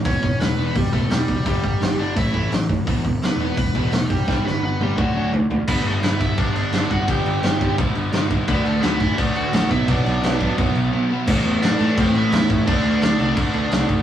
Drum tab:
CC |--------|--------|--------|--------|
HH |o-o-o-o-|o-o-o-o-|o-o-o-o-|--------|
SD |--o---o-|--o---o-|--o---o-|oo------|
T1 |--------|--------|--------|---o----|
T2 |--------|--------|--------|----o---|
FT |--------|--------|--------|------oo|
BD |oo--oo-o|oo--oo-o|oo--oo-o|o---o---|

CC |xxxxxxxx|xxxxxxxx|xxxxxxxx|xxxxxx--|
HH |--------|--------|--------|--------|
SD |--o---o-|--o---o-|--o---o-|--o-----|
T1 |--------|--------|--------|--------|
T2 |--------|--------|--------|--------|
FT |--------|--------|--------|--------|
BD |o--oo--o|o--oo--o|o--oo--o|o--oo---|

CC |xxxxxxxx|xxxxxxxx|
HH |--------|--------|
SD |--o---o-|--o---o-|
T1 |--------|--------|
T2 |--------|--------|
FT |--------|--------|
BD |o---o--o|o---o--o|